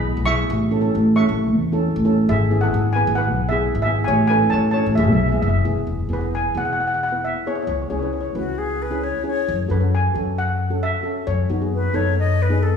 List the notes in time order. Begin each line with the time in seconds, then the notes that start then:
Already playing: B3 E4 G#4 D#5 B5
0.17 B1
0.26 B3 E4 G#4 E5 C#6
0.50 A1
0.71 C#4 E4 A4
0.81 C#4 E4 A4
0.95 A1
1.15 C#4 E4 A4 E5 C#6
1.29 A1
1.52 E2
1.72 C#4 E4 A4
1.96 A1
2.05 C#4 E4 A4
2.29 G#1 G#4 E5
2.50 B3 E4 G#4
2.61 B3 E4 G#4 A4 F#5
2.74 G#1
2.93 B3 E4 G#4 B4 G#5
3.07 G#1
3.15 B4 F#5
3.30 B1
3.49 B3 E4 G#4 E5
3.75 G#1
3.82 E4 G#4 E5
3.87 B3
4.04 A1 C#5 G#5
4.27 C#4 E4 A4 B4 G#5
4.43 C#4 E4 A4
4.50 A1 C#5 A5
4.71 C#5 A5
4.76 C#4 E4 A4
4.86 A1
4.95 E1 G#4 E5
5.03 E5
5.09 B1 E5
5.20 E5
5.28 B3 E4 E5
5.32 G#4
5.36 E5
5.42 F#1 E5
5.49 E5
5.65 E1 B3 E4 G#4
5.87 E1
6.09 E1 B3 E4 G#4
6.13 B4
6.21 B3 E4 B4
6.35 G#5
6.55 E1 B3 E4 G#4 F#5
6.65 F#5
6.73 F#5
6.80 F#5
6.87 F#5
6.94 F#5
7.03 F#5
7.09 B4 F#5
7.13 B3 E4
7.25 E5
7.46 B3 E4 G#4 C#5
7.55 C#5
7.62 C#5
7.67 C#2 C#5
7.75 C#5
7.82 C#5
7.90 C#2 C#4 E4 G#4 C#5
7.99 C#4 E4 B4 C#5
8.05 C#5
8.13 C#5
8.21 C#5
8.35 C#2 C#4 E4 F#4 B4
8.58 G#4
8.82 B4
8.90 C#4 E4 G#4
9.04 C#5
9.23 C#4 E4 G#4 C#5
9.48 F#2
9.68 F#2 C#4 F#4 A4 B4
9.80 C#4 F#4 B4
9.95 G#5
10.14 F#2 C#4 F#4 A4
10.38 F#5
10.70 C#4 F#4 A4
10.83 E5
11.03 C#4 F#4 A4
11.27 F#2 C#5
11.49 F#2 B3 D#4 F#4
11.61 B3 D#4 G#4
11.75 B4
11.93 F#2 B3 D#4 A4 C#5
12.19 D#5
12.42 B4
12.49 B3 D#4 G#4
12.63 A4